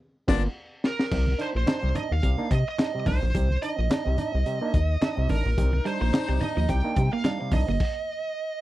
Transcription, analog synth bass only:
0.28 G1
1.12 C2
1.55 A#1
1.84 C2
2.12 D#2
2.23 C2
2.51 C3
3.07 C2
3.23 A#1
3.35 C2
3.79 A#1
4.07 C2
4.35 C2
4.74 D#2
5.18 C2
5.30 A1
5.46 A#1
5.58 C2
6.01 A#1
6.29 C2
6.57 D#2
6.69 C2
6.97 C3
7.52 C2
7.69 G1

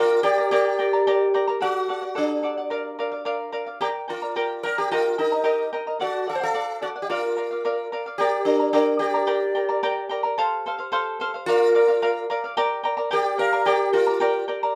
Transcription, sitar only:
Already playing: F4
0.23 G4
0.51 G4
1.62 F#4
2.18 D4
3.81 G4
4.10 F4
4.63 A#4
4.78 G4
4.91 F4
5.19 D#4
6.02 F#4
6.29 A4
6.35 C5
6.43 A4
6.82 F#4
7.02 G4
7.10 F4
8.18 G4
8.45 D4
8.73 D4
8.99 G4
11.46 F4
13.13 G4
13.39 A#4
13.66 G4
13.93 F4

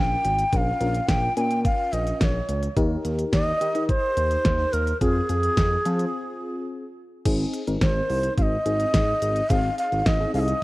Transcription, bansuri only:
Already playing: G5
0.53 G5
0.57 F5
1.09 G5
1.36 G#5
1.41 G5
1.64 F5
1.93 D#5
2.21 C#5 D#5
3.33 D#5
3.89 C5
4.73 A#4
5.01 G#4
7.81 C5
8.38 F5
8.42 D#5
9.50 F5
9.78 F5
10.06 D#5
10.34 F5
10.39 D#5

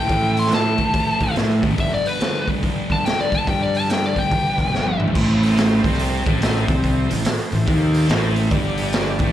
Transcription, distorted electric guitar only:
0.09 A2 E3 A3
0.51 A2 E3 A3
0.77 A2 E3 A3
0.92 A2 E3 A3
1.35 A2 E3 A3
1.61 A2 E3 A3
1.77 G2 D3 G3
2.20 G2 D3 G3
2.46 G2 D3 G3
2.62 G2 D3 G3
3.04 G2 D3 G3
3.31 G2 D3 G3
3.46 G2 D3 G3
3.88 G2 D3 G3
4.15 G2 D3 G3
4.31 G2 D3 G3
4.73 G2 D3 G3
4.99 G2 D3 G3
5.14 A2 A3
5.83 C3 C4
6.25 A2 A3
6.67 C3 C4
7.10 A2
7.52 A2
7.67 D#3 D#4
8.08 A2 A3
8.51 G2 G3
9.20 A2 A3

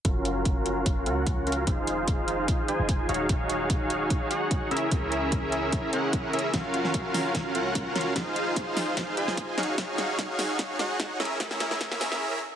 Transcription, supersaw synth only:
0.05 C#4 F4 F#4 A#4 F5
1.06 C#4 F4 F#4 A#4 F#5
1.47 C#4 F4 F#4 A#4 F5
1.67 D#4 F4 G#4 C5 F5
2.68 D#4 F4 G#4 C5 G#5
3.09 D#4 F#4 G#4 C#5 F5
3.29 D#4 F#4 G#4 C#5 F5
4.30 D#4 F#4 G#4 C#5 F#5
4.71 C#4 E4 G#4 A#4 E5
4.91 C#4 E4 G#4 A#4 E5
5.93 C#4 E4 G#4 A#4 F#5
6.33 C#4 E4 G#4 A#4 E5
6.54 C#4 F4 F#4 A#4 F5
7.55 C#4 F4 F#4 A#4 F#5
7.95 C#4 F4 F#4 A#4 F5
8.16 D#4 F4 G#4 C5 F5
9.17 D#4 F4 G#4 C5 G#5
9.58 D#4 F#4 G#4 C#5 F5
9.78 D#4 F#4 G#4 C#5 F5
10.79 D#4 F#4 G#4 C#5 F#5
11.20 C#4 E4 G#4 A#4 E5
11.40 C#4 E4 G#4 A#4 E5

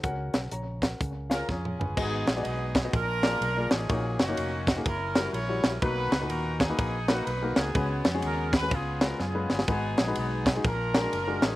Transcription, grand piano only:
0.03 C#3 C#4 F#4 A#4 F#5
0.34 A#4 F#5
0.52 C#5 A#5
0.82 A#4 F#5
1.00 C#3
1.30 C#4 F4 G#4 F5
1.49 C#5 A#5
1.79 B4 G#5
1.97 G#2 B3 F#4 G#4 D#5
2.36 B3 F#4 G#4 D5
2.43 D#5
2.84 B3 F#4 G#4 D#5
2.94 A#2
3.24 A#3 F4 G#4 D5
3.57 A#3 F4 G#4 D5
3.90 A#2 A#3 D#4 F#4 C#5
4.28 A#3 D#4 F#4 C#5
4.77 A#3 D#4 F#4 G#4
5.15 G3 E4 F#4 A#4
5.49 G3 E4 F#4 C#5
5.82 B2 A#3 D#4 F#4 B4
6.21 A#2 D#4 F#4 B4
6.69 A#3 D#4 F#4 B4
7.08 A#3 D#4 F#4 B4
7.42 A#3 D#4 F#4 A#4
7.76 C#3 G#3 C#4 F#4 B4
8.14 G#3 C#4 F#4 G#4
8.62 G#3 C#4 F#4 B4
8.72 C#3
9.01 G#3 C#4 F4 B4
9.35 G#3 C#4 F4 B4
9.68 G#2 G#3 D#4 F#4 B4
10.07 G#3 D#4 F#4 B4
10.55 G#3 D#4 F#4 G#4
10.64 A#2
10.94 G#3 D4 F#4 A#4
11.27 G#3 D4 F#4 A#4

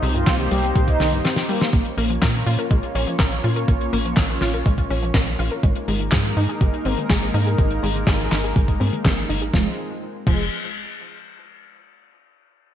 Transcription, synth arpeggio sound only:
0.02 C3
0.15 G2
0.27 C4
0.51 G3
0.64 C4
0.76 A#2
1.00 D#3
1.12 G2
1.25 C4
1.49 G3
1.61 C4
1.73 A#3
1.98 A#3
2.10 F3
2.22 A#4
2.46 F4
2.59 A#4
2.71 G#3
2.95 C#4
3.07 F3
3.20 A#4
3.44 F4
3.56 A#4
3.68 A#3
3.93 A#3
4.05 F3
4.17 A#4
4.42 F4
4.54 A#4
4.66 G#3
4.90 C#4
5.03 F3
5.15 A#4
5.39 F4
5.51 A#4
5.64 G#3
5.88 G#3
6.00 D#3
6.12 G#4
6.37 D#4
6.49 G#4
6.61 G3
6.86 C4
6.98 D#3
7.10 G#4
7.34 D#4
7.46 G#4
7.59 G#3
7.83 G#3
7.95 D#3
8.07 G#4
8.32 D#4
8.44 G#4
8.56 G3
8.80 C4
8.93 D#3
9.05 G#4
9.29 D#4
9.42 G#4
9.54 F3
10.27 F3

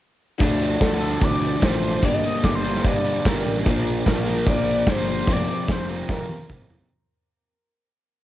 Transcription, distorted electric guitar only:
0.40 D3 F3 A3 D4
1.00 D3 F3 A3 D4
1.61 D3 F3 A3 D4
2.03 G2 D3 G3 A#3 D4
2.63 G2 D3 G3 A#3 D4
3.24 G2 D3 G3 A#3 D4
3.65 A#2 F3 A#3 D4
4.26 A#2 F3 A#3 D4
4.85 A#2 F3 A#3 D4
5.26 F2 C3 F3 A#3 C4
5.89 F2 C3 F3 A#3 C4
6.49 F2 C3 F3 A#3 C4

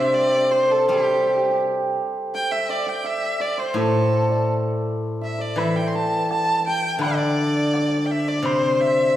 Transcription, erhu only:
Already playing: E5
0.14 D5
0.51 C5
0.71 A4
0.88 G4
2.35 G5
2.51 E5
2.70 D5
2.88 G5
3.06 E5
3.41 D5
3.59 C5
3.78 A4
5.24 E5
5.41 D5
5.58 E5
5.76 G5
5.87 C6
5.95 A5
6.31 A5
6.67 G5
7.03 D5
8.06 G5
8.11 E5
8.28 D5
8.46 C5
8.81 E5

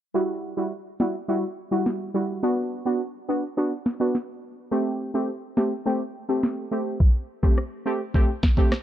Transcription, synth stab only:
0.14 G3 E4 F#4
0.57 G3 E4 F#4
1.00 G3 E4 F#4
1.28 G3 E4 F#4
1.71 G3 E4 F#4
2.14 G3 E4 F#4
2.43 B3 D4 F#4
2.85 B3 D4 F#4
3.28 B3 D4 F#4
3.57 B3 D4 F#4
4.00 B3 D4 F#4
4.71 A3 C4 G4
5.14 A3 C4 G4
5.57 A3 C4 G4
5.86 A3 C4 G4
6.29 A3 C4 G4
6.71 A3 C4 G4
7.43 A3 C4 G4
7.86 A3 C4 G4
8.14 A3 C4 G4
8.57 A3 C4 G4

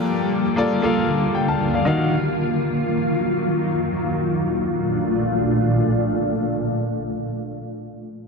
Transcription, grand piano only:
Already playing: A#3 F4 A4 D5
0.56 A#3 F4 A4 D5
0.82 A#3 F4 A4 F5
1.35 G5
1.48 F5 A5
1.74 D5 F5
1.85 D#3 D#4 F#4 F5

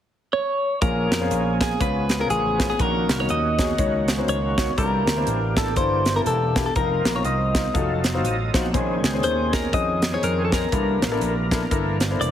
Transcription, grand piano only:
0.81 A#2 C#4 F4 G#4 A#4
1.21 C#4 F4 G#4 C5
1.61 C#4 F4 G#4 A#4
1.80 C#3 C#4 F4 G#4 B4
2.19 C#4 F4 G#4 A#4
2.59 C#4 F4 G#4 B4
2.79 A#2 C#4 D#4 F#4 A#4
3.19 C#4 D#4 F#4 A#4
3.59 C#4 D#4 F#4 G#4
3.79 C#4 D#4 F#4 C#5
4.18 C#4 D#4 F#4 C5
4.58 C#4 D#4 F#4 C#5
4.77 C3 A#3 D4 E4 A4
5.17 A#3 D4 E4 C5
5.56 A#3 D4 E4 A4
5.76 A#3 D4 E4 A4
6.16 A#3 D4 E4 A4
6.56 A#3 D4 E4 G4
6.76 C4 D#4 F4 A#4
7.15 C4 D#4 F4 A#4
7.54 C4 D#4 F4 C5
7.74 D#4 F4 F#4 A4
8.14 D#4 F4 F#4 C5
8.54 D#4 F4 F#4 C5
8.73 A#2 C#4 D#4 G#4 C5
9.13 C#4 D#4 G#4 C5
9.52 C#4 D#4 G#4 D#5
9.73 C#4 D#4 G#4 C5
10.13 C#4 D#4 G#4 C5
10.52 C#4 D#4 G#4 C5
10.72 C3 D4 E4 A4 A#4
11.12 D4 E4 A4 A#4
11.51 D4 E4 A4 A#4
11.71 D4 E4 A4 A#4
12.11 D4 E4 A4 C5

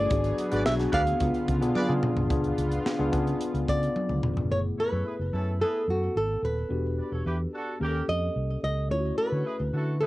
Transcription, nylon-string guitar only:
Already playing: D5
0.66 E5
0.94 F5
3.69 D5
4.52 C#5
4.80 B4
5.61 A4
5.90 F#4
6.17 A4
6.45 B4
8.09 D#5
8.64 D#5
8.91 C#5
9.18 B4
10.01 A4

